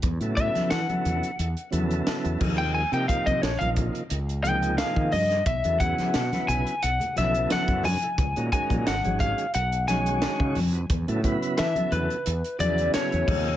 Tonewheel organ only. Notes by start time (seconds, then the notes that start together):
0.20 C#3 F#3 B3 E4 A4
0.37 C#3 F#3 B3 E4 A4
0.88 C#3 F#3 B3 E4 A4
1.39 E4 A4
1.71 C#3 F#3 B3 E4 A4
2.39 C3 F3 A#3 D#4 G#4
2.91 C3 F3 A#3 D#4 A#4
3.07 C3 F3 A#3 D#4 G4
3.60 C3 F3 A#3 D#4 F4
4.10 D#4 A#4
4.43 C3 F3 A#3 D#4 G#4
5.29 D#4 G#4
5.64 C#3 F#3 B3 E4 A4
5.79 C#3 F#3 B3 E4 G#4
6.32 C#3 F#3 B3 E4 B4
6.82 E4 A4
7.16 C#3 F#3 B3 E4 A4
8.03 E4 A4
8.36 D#3 G#3 C#4 F#4 A#4
8.52 D#3 G#3 C#4 F#4 A#4
9.03 D#3 G#3 C#4 F#4 G#4
9.54 F#4 A#4
9.88 D#3 G#3 C#4 F#4 C#5
10.73 F#4 B4
11.07 C#3 F#3 B3 E4 A4
11.23 C#3 F#3 B3 E4 B4
11.74 C#3 F#3 B3 E4 A4
12.25 E4 A4
12.59 C#3 F#3 B3 E4 G#4
13.26 C3 F3 A#3 D#4 G#4